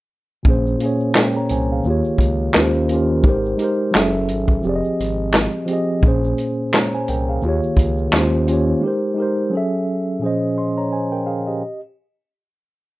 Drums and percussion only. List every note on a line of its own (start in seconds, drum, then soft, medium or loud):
0.45 kick loud
0.45 shaker medium
0.67 shaker soft
0.80 closed hi-hat medium
0.80 shaker soft
1.00 shaker soft
1.14 snare loud
1.14 clap medium
1.14 shaker medium
1.34 shaker soft
1.49 closed hi-hat medium
1.49 shaker soft
1.84 shaker medium
2.05 shaker soft
2.18 kick medium
2.18 closed hi-hat medium
2.18 shaker soft
2.54 snare loud
2.54 clap medium
2.54 shaker medium
2.75 shaker soft
2.89 closed hi-hat medium
2.89 shaker soft
3.24 kick loud
3.24 shaker medium
3.45 shaker soft
3.59 closed hi-hat medium
3.59 shaker soft
3.93 snare loud
3.93 clap medium
3.93 shaker medium
4.15 shaker soft
4.28 closed hi-hat medium
4.28 shaker soft
4.48 kick medium
4.48 shaker soft
4.63 shaker medium
4.84 shaker soft
5.00 closed hi-hat medium
5.00 shaker soft
5.33 snare loud
5.33 clap medium
5.33 shaker medium
5.54 shaker soft
5.68 closed hi-hat medium
5.68 shaker soft
6.03 kick loud
6.03 shaker medium
6.24 shaker soft
6.38 closed hi-hat medium
6.38 shaker soft
6.72 snare loud
6.72 clap medium
6.72 shaker medium
6.93 shaker soft
7.08 closed hi-hat medium
7.08 shaker soft
7.42 shaker medium
7.63 shaker soft
7.77 kick medium
7.77 closed hi-hat medium
7.77 shaker soft
7.97 shaker soft
8.13 snare loud
8.13 clap medium
8.13 shaker medium
8.34 shaker soft
8.48 closed hi-hat medium
8.48 shaker soft